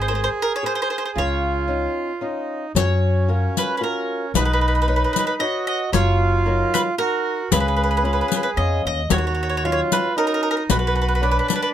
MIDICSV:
0, 0, Header, 1, 6, 480
1, 0, Start_track
1, 0, Key_signature, 6, "major"
1, 0, Tempo, 532387
1, 1042, Time_signature, 3, 2, 24, 8
1, 3929, Tempo, 527241
1, 10647, End_track
2, 0, Start_track
2, 0, Title_t, "Mandolin"
2, 0, Program_c, 0, 25
2, 13, Note_on_c, 0, 72, 48
2, 48, Note_off_c, 0, 72, 0
2, 75, Note_on_c, 0, 72, 64
2, 110, Note_off_c, 0, 72, 0
2, 136, Note_on_c, 0, 72, 56
2, 181, Note_off_c, 0, 72, 0
2, 214, Note_on_c, 0, 72, 69
2, 256, Note_off_c, 0, 72, 0
2, 381, Note_on_c, 0, 70, 80
2, 466, Note_off_c, 0, 70, 0
2, 502, Note_on_c, 0, 73, 80
2, 583, Note_off_c, 0, 73, 0
2, 597, Note_on_c, 0, 72, 85
2, 649, Note_off_c, 0, 72, 0
2, 679, Note_on_c, 0, 72, 67
2, 727, Note_off_c, 0, 72, 0
2, 739, Note_on_c, 0, 72, 71
2, 793, Note_off_c, 0, 72, 0
2, 813, Note_on_c, 0, 72, 59
2, 862, Note_off_c, 0, 72, 0
2, 884, Note_on_c, 0, 72, 65
2, 927, Note_off_c, 0, 72, 0
2, 951, Note_on_c, 0, 72, 50
2, 993, Note_off_c, 0, 72, 0
2, 1067, Note_on_c, 0, 73, 78
2, 1980, Note_off_c, 0, 73, 0
2, 2499, Note_on_c, 0, 73, 78
2, 3196, Note_off_c, 0, 73, 0
2, 3227, Note_on_c, 0, 71, 70
2, 3380, Note_off_c, 0, 71, 0
2, 3402, Note_on_c, 0, 71, 46
2, 3454, Note_off_c, 0, 71, 0
2, 3458, Note_on_c, 0, 70, 60
2, 3899, Note_off_c, 0, 70, 0
2, 3933, Note_on_c, 0, 71, 67
2, 3999, Note_off_c, 0, 71, 0
2, 4016, Note_on_c, 0, 71, 53
2, 4078, Note_off_c, 0, 71, 0
2, 4089, Note_on_c, 0, 71, 56
2, 4150, Note_off_c, 0, 71, 0
2, 4161, Note_on_c, 0, 71, 44
2, 4210, Note_off_c, 0, 71, 0
2, 4221, Note_on_c, 0, 71, 53
2, 4275, Note_off_c, 0, 71, 0
2, 4286, Note_on_c, 0, 71, 47
2, 4336, Note_off_c, 0, 71, 0
2, 4347, Note_on_c, 0, 71, 56
2, 4393, Note_off_c, 0, 71, 0
2, 4404, Note_on_c, 0, 71, 49
2, 4468, Note_off_c, 0, 71, 0
2, 4479, Note_on_c, 0, 71, 54
2, 4542, Note_off_c, 0, 71, 0
2, 4553, Note_on_c, 0, 71, 46
2, 4621, Note_off_c, 0, 71, 0
2, 4632, Note_on_c, 0, 71, 57
2, 4672, Note_off_c, 0, 71, 0
2, 4683, Note_on_c, 0, 71, 52
2, 4747, Note_off_c, 0, 71, 0
2, 4758, Note_on_c, 0, 71, 62
2, 4817, Note_off_c, 0, 71, 0
2, 4878, Note_on_c, 0, 75, 85
2, 5114, Note_off_c, 0, 75, 0
2, 5125, Note_on_c, 0, 75, 74
2, 5359, Note_off_c, 0, 75, 0
2, 5362, Note_on_c, 0, 73, 92
2, 6059, Note_off_c, 0, 73, 0
2, 6096, Note_on_c, 0, 71, 82
2, 6157, Note_off_c, 0, 71, 0
2, 6320, Note_on_c, 0, 70, 81
2, 6769, Note_off_c, 0, 70, 0
2, 6811, Note_on_c, 0, 71, 75
2, 6872, Note_off_c, 0, 71, 0
2, 6883, Note_on_c, 0, 71, 58
2, 6944, Note_off_c, 0, 71, 0
2, 6955, Note_on_c, 0, 71, 52
2, 7020, Note_off_c, 0, 71, 0
2, 7031, Note_on_c, 0, 71, 49
2, 7084, Note_off_c, 0, 71, 0
2, 7095, Note_on_c, 0, 71, 60
2, 7149, Note_off_c, 0, 71, 0
2, 7160, Note_on_c, 0, 71, 52
2, 7207, Note_off_c, 0, 71, 0
2, 7218, Note_on_c, 0, 71, 63
2, 7277, Note_off_c, 0, 71, 0
2, 7290, Note_on_c, 0, 71, 49
2, 7354, Note_off_c, 0, 71, 0
2, 7363, Note_on_c, 0, 71, 57
2, 7427, Note_off_c, 0, 71, 0
2, 7437, Note_on_c, 0, 71, 48
2, 7491, Note_off_c, 0, 71, 0
2, 7502, Note_on_c, 0, 71, 55
2, 7564, Note_off_c, 0, 71, 0
2, 7575, Note_on_c, 0, 71, 51
2, 7626, Note_off_c, 0, 71, 0
2, 7637, Note_on_c, 0, 71, 70
2, 7696, Note_off_c, 0, 71, 0
2, 7765, Note_on_c, 0, 75, 72
2, 8008, Note_off_c, 0, 75, 0
2, 8034, Note_on_c, 0, 75, 74
2, 8254, Note_off_c, 0, 75, 0
2, 8258, Note_on_c, 0, 73, 89
2, 8310, Note_off_c, 0, 73, 0
2, 8321, Note_on_c, 0, 73, 60
2, 8390, Note_off_c, 0, 73, 0
2, 8401, Note_on_c, 0, 73, 48
2, 8459, Note_off_c, 0, 73, 0
2, 8470, Note_on_c, 0, 73, 44
2, 8534, Note_off_c, 0, 73, 0
2, 8545, Note_on_c, 0, 73, 58
2, 8595, Note_off_c, 0, 73, 0
2, 8606, Note_on_c, 0, 73, 49
2, 8667, Note_off_c, 0, 73, 0
2, 8677, Note_on_c, 0, 73, 62
2, 8734, Note_off_c, 0, 73, 0
2, 8748, Note_on_c, 0, 73, 59
2, 8802, Note_off_c, 0, 73, 0
2, 8813, Note_on_c, 0, 73, 68
2, 8879, Note_off_c, 0, 73, 0
2, 8999, Note_on_c, 0, 71, 76
2, 9206, Note_off_c, 0, 71, 0
2, 9228, Note_on_c, 0, 70, 78
2, 9291, Note_off_c, 0, 70, 0
2, 9312, Note_on_c, 0, 70, 65
2, 9365, Note_off_c, 0, 70, 0
2, 9376, Note_on_c, 0, 70, 69
2, 9439, Note_off_c, 0, 70, 0
2, 9455, Note_on_c, 0, 70, 69
2, 9510, Note_off_c, 0, 70, 0
2, 9528, Note_on_c, 0, 70, 65
2, 9572, Note_off_c, 0, 70, 0
2, 9583, Note_on_c, 0, 70, 43
2, 9636, Note_off_c, 0, 70, 0
2, 9709, Note_on_c, 0, 71, 81
2, 9773, Note_off_c, 0, 71, 0
2, 9784, Note_on_c, 0, 71, 55
2, 9848, Note_off_c, 0, 71, 0
2, 9859, Note_on_c, 0, 71, 66
2, 9924, Note_off_c, 0, 71, 0
2, 9935, Note_on_c, 0, 71, 52
2, 9980, Note_off_c, 0, 71, 0
2, 9991, Note_on_c, 0, 71, 53
2, 10042, Note_off_c, 0, 71, 0
2, 10053, Note_on_c, 0, 71, 53
2, 10103, Note_off_c, 0, 71, 0
2, 10114, Note_on_c, 0, 71, 58
2, 10174, Note_off_c, 0, 71, 0
2, 10185, Note_on_c, 0, 71, 59
2, 10251, Note_off_c, 0, 71, 0
2, 10262, Note_on_c, 0, 71, 63
2, 10320, Note_off_c, 0, 71, 0
2, 10331, Note_on_c, 0, 71, 56
2, 10400, Note_off_c, 0, 71, 0
2, 10417, Note_on_c, 0, 71, 62
2, 10471, Note_off_c, 0, 71, 0
2, 10482, Note_on_c, 0, 71, 64
2, 10536, Note_off_c, 0, 71, 0
2, 10545, Note_on_c, 0, 71, 79
2, 10599, Note_off_c, 0, 71, 0
2, 10647, End_track
3, 0, Start_track
3, 0, Title_t, "Accordion"
3, 0, Program_c, 1, 21
3, 0, Note_on_c, 1, 68, 89
3, 1048, Note_on_c, 1, 65, 88
3, 1089, Note_off_c, 1, 68, 0
3, 2003, Note_on_c, 1, 63, 59
3, 2035, Note_off_c, 1, 65, 0
3, 2454, Note_off_c, 1, 63, 0
3, 2489, Note_on_c, 1, 61, 74
3, 3893, Note_off_c, 1, 61, 0
3, 3934, Note_on_c, 1, 63, 79
3, 4891, Note_on_c, 1, 66, 89
3, 4918, Note_off_c, 1, 63, 0
3, 5333, Note_off_c, 1, 66, 0
3, 5373, Note_on_c, 1, 65, 103
3, 6289, Note_off_c, 1, 65, 0
3, 6331, Note_on_c, 1, 66, 100
3, 6801, Note_on_c, 1, 68, 84
3, 6822, Note_off_c, 1, 66, 0
3, 7990, Note_off_c, 1, 68, 0
3, 8260, Note_on_c, 1, 66, 94
3, 8738, Note_on_c, 1, 65, 94
3, 8755, Note_off_c, 1, 66, 0
3, 9185, Note_off_c, 1, 65, 0
3, 9216, Note_on_c, 1, 63, 106
3, 9708, Note_on_c, 1, 66, 86
3, 9711, Note_off_c, 1, 63, 0
3, 10172, Note_on_c, 1, 62, 85
3, 10196, Note_off_c, 1, 66, 0
3, 10647, Note_off_c, 1, 62, 0
3, 10647, End_track
4, 0, Start_track
4, 0, Title_t, "Nylon-string guitar"
4, 0, Program_c, 2, 24
4, 91, Note_on_c, 2, 68, 49
4, 97, Note_on_c, 2, 70, 42
4, 101, Note_on_c, 2, 72, 43
4, 471, Note_off_c, 2, 68, 0
4, 475, Note_off_c, 2, 70, 0
4, 476, Note_off_c, 2, 72, 0
4, 567, Note_on_c, 2, 68, 45
4, 569, Note_on_c, 2, 70, 42
4, 576, Note_on_c, 2, 72, 48
4, 948, Note_off_c, 2, 68, 0
4, 949, Note_off_c, 2, 70, 0
4, 954, Note_off_c, 2, 72, 0
4, 1041, Note_on_c, 2, 49, 61
4, 1507, Note_off_c, 2, 49, 0
4, 1512, Note_on_c, 2, 61, 47
4, 1517, Note_on_c, 2, 63, 38
4, 1525, Note_on_c, 2, 65, 44
4, 1901, Note_off_c, 2, 61, 0
4, 1906, Note_off_c, 2, 63, 0
4, 1907, Note_off_c, 2, 65, 0
4, 1993, Note_on_c, 2, 61, 38
4, 1995, Note_on_c, 2, 63, 34
4, 2000, Note_on_c, 2, 65, 41
4, 2385, Note_off_c, 2, 61, 0
4, 2385, Note_off_c, 2, 63, 0
4, 2389, Note_off_c, 2, 65, 0
4, 2481, Note_on_c, 2, 54, 63
4, 2953, Note_off_c, 2, 54, 0
4, 2960, Note_on_c, 2, 65, 45
4, 2962, Note_on_c, 2, 66, 38
4, 2969, Note_on_c, 2, 70, 51
4, 3349, Note_off_c, 2, 65, 0
4, 3349, Note_off_c, 2, 66, 0
4, 3354, Note_off_c, 2, 70, 0
4, 3431, Note_on_c, 2, 65, 43
4, 3434, Note_on_c, 2, 66, 37
4, 3439, Note_on_c, 2, 70, 55
4, 3821, Note_off_c, 2, 65, 0
4, 3822, Note_off_c, 2, 66, 0
4, 3826, Note_off_c, 2, 70, 0
4, 3925, Note_on_c, 2, 59, 64
4, 4393, Note_off_c, 2, 59, 0
4, 4400, Note_on_c, 2, 71, 47
4, 4408, Note_on_c, 2, 73, 38
4, 4412, Note_on_c, 2, 75, 54
4, 4786, Note_off_c, 2, 71, 0
4, 4791, Note_off_c, 2, 73, 0
4, 4792, Note_off_c, 2, 75, 0
4, 4871, Note_on_c, 2, 71, 50
4, 4876, Note_on_c, 2, 73, 48
4, 4882, Note_on_c, 2, 75, 47
4, 5260, Note_off_c, 2, 71, 0
4, 5262, Note_off_c, 2, 73, 0
4, 5266, Note_off_c, 2, 75, 0
4, 5354, Note_on_c, 2, 54, 56
4, 5822, Note_off_c, 2, 54, 0
4, 5840, Note_on_c, 2, 63, 53
4, 5844, Note_on_c, 2, 70, 49
4, 5845, Note_on_c, 2, 54, 46
4, 6225, Note_off_c, 2, 63, 0
4, 6226, Note_off_c, 2, 70, 0
4, 6227, Note_off_c, 2, 54, 0
4, 6316, Note_on_c, 2, 63, 46
4, 6319, Note_on_c, 2, 66, 42
4, 6324, Note_on_c, 2, 70, 50
4, 6704, Note_off_c, 2, 63, 0
4, 6704, Note_off_c, 2, 66, 0
4, 6708, Note_off_c, 2, 70, 0
4, 6805, Note_on_c, 2, 49, 60
4, 7270, Note_off_c, 2, 49, 0
4, 7274, Note_on_c, 2, 59, 42
4, 7277, Note_on_c, 2, 61, 42
4, 7281, Note_on_c, 2, 65, 50
4, 7665, Note_off_c, 2, 59, 0
4, 7668, Note_off_c, 2, 61, 0
4, 7668, Note_off_c, 2, 65, 0
4, 7757, Note_on_c, 2, 59, 42
4, 7764, Note_on_c, 2, 61, 44
4, 7769, Note_on_c, 2, 65, 42
4, 8151, Note_off_c, 2, 59, 0
4, 8156, Note_off_c, 2, 61, 0
4, 8157, Note_off_c, 2, 65, 0
4, 8243, Note_on_c, 2, 51, 61
4, 8717, Note_off_c, 2, 51, 0
4, 8740, Note_on_c, 2, 61, 47
4, 8745, Note_on_c, 2, 63, 40
4, 8748, Note_on_c, 2, 54, 56
4, 9124, Note_off_c, 2, 61, 0
4, 9125, Note_off_c, 2, 63, 0
4, 9128, Note_off_c, 2, 54, 0
4, 9216, Note_on_c, 2, 61, 46
4, 9221, Note_on_c, 2, 63, 40
4, 9227, Note_on_c, 2, 66, 45
4, 9601, Note_off_c, 2, 61, 0
4, 9605, Note_off_c, 2, 63, 0
4, 9606, Note_off_c, 2, 66, 0
4, 9703, Note_on_c, 2, 47, 65
4, 10165, Note_off_c, 2, 47, 0
4, 10173, Note_on_c, 2, 59, 44
4, 10178, Note_on_c, 2, 62, 57
4, 10179, Note_on_c, 2, 73, 47
4, 10556, Note_off_c, 2, 59, 0
4, 10557, Note_off_c, 2, 73, 0
4, 10558, Note_off_c, 2, 62, 0
4, 10647, End_track
5, 0, Start_track
5, 0, Title_t, "Upright bass"
5, 0, Program_c, 3, 32
5, 0, Note_on_c, 3, 32, 91
5, 234, Note_off_c, 3, 32, 0
5, 1050, Note_on_c, 3, 37, 75
5, 1672, Note_off_c, 3, 37, 0
5, 2478, Note_on_c, 3, 42, 81
5, 3107, Note_off_c, 3, 42, 0
5, 3913, Note_on_c, 3, 35, 91
5, 4541, Note_off_c, 3, 35, 0
5, 5358, Note_on_c, 3, 30, 77
5, 5982, Note_off_c, 3, 30, 0
5, 6803, Note_on_c, 3, 37, 99
5, 7430, Note_off_c, 3, 37, 0
5, 7766, Note_on_c, 3, 41, 70
5, 8001, Note_off_c, 3, 41, 0
5, 8022, Note_on_c, 3, 39, 76
5, 8229, Note_off_c, 3, 39, 0
5, 8256, Note_on_c, 3, 39, 82
5, 8882, Note_off_c, 3, 39, 0
5, 9698, Note_on_c, 3, 35, 85
5, 10318, Note_off_c, 3, 35, 0
5, 10647, End_track
6, 0, Start_track
6, 0, Title_t, "Riq"
6, 2490, Note_on_c, 9, 54, 58
6, 2580, Note_off_c, 9, 54, 0
6, 3219, Note_on_c, 9, 54, 47
6, 3309, Note_off_c, 9, 54, 0
6, 3923, Note_on_c, 9, 54, 59
6, 4014, Note_off_c, 9, 54, 0
6, 4659, Note_on_c, 9, 54, 47
6, 4751, Note_off_c, 9, 54, 0
6, 5371, Note_on_c, 9, 54, 48
6, 5462, Note_off_c, 9, 54, 0
6, 6105, Note_on_c, 9, 54, 48
6, 6196, Note_off_c, 9, 54, 0
6, 6806, Note_on_c, 9, 54, 68
6, 6897, Note_off_c, 9, 54, 0
6, 7532, Note_on_c, 9, 54, 53
6, 7623, Note_off_c, 9, 54, 0
6, 8249, Note_on_c, 9, 54, 65
6, 8340, Note_off_c, 9, 54, 0
6, 8992, Note_on_c, 9, 54, 56
6, 9083, Note_off_c, 9, 54, 0
6, 9699, Note_on_c, 9, 54, 67
6, 9790, Note_off_c, 9, 54, 0
6, 10431, Note_on_c, 9, 54, 52
6, 10522, Note_off_c, 9, 54, 0
6, 10647, End_track
0, 0, End_of_file